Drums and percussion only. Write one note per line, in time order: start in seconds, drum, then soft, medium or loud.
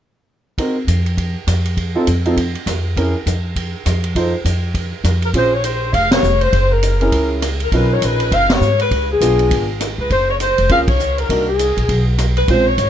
0.58 kick soft
0.58 ride medium
0.88 hi-hat pedal soft
0.88 ride medium
1.06 ride soft
1.17 kick soft
1.17 ride soft
1.47 cross-stick soft
1.47 hi-hat pedal soft
1.47 ride medium
1.66 ride soft
1.77 kick soft
1.77 ride soft
2.07 hi-hat pedal soft
2.07 ride medium
2.26 ride soft
2.37 kick soft
2.37 ride medium
2.55 ride soft
2.67 cross-stick medium
2.67 hi-hat pedal soft
2.67 ride medium
2.97 kick soft
2.97 ride medium
3.27 hi-hat pedal soft
3.27 ride soft
3.56 kick soft
3.56 ride medium
3.86 cross-stick soft
3.86 hi-hat pedal soft
3.86 ride medium
4.04 ride soft
4.15 kick soft
4.15 ride medium
4.45 hi-hat pedal medium
4.45 ride medium
4.74 kick soft
4.74 ride soft
5.04 cross-stick medium
5.04 hi-hat pedal soft
5.04 ride medium
5.22 ride soft
5.34 kick soft
5.34 ride medium
5.64 hi-hat pedal soft
5.64 ride medium
5.93 kick soft
5.93 ride medium
6.11 snare medium
6.11 ride medium
6.23 hi-hat pedal soft
6.41 ride soft
6.53 kick soft
6.53 ride medium
6.83 hi-hat pedal medium
6.83 ride medium
7.01 ride soft
7.12 kick soft
7.12 ride medium
7.42 cross-stick medium
7.42 hi-hat pedal medium
7.42 ride medium
7.60 ride soft
7.72 kick soft
7.72 ride medium
8.02 hi-hat pedal soft
8.02 ride medium
8.20 ride soft
8.32 kick soft
8.32 ride medium
8.50 snare medium
8.50 ride medium
8.61 hi-hat pedal medium
8.80 ride soft
8.91 kick soft
8.91 ride medium
9.21 hi-hat pedal medium
9.21 ride medium
9.39 ride soft
9.51 kick soft
9.51 ride medium
9.80 cross-stick medium
9.80 hi-hat pedal soft
9.80 ride medium
10.10 kick soft
10.10 ride soft
10.40 hi-hat pedal soft
10.40 ride medium
10.58 ride soft
10.69 kick soft
10.69 ride medium
10.88 kick medium
10.88 ride medium
11.00 hi-hat pedal soft
11.18 ride soft
11.29 kick soft
11.29 ride medium
11.59 hi-hat pedal soft
11.59 ride medium
11.78 ride soft
11.89 kick soft
11.89 ride medium
12.18 cross-stick medium
12.18 hi-hat pedal soft
12.18 ride medium
12.37 ride soft
12.48 kick soft
12.48 ride soft
12.78 hi-hat pedal soft
12.78 ride medium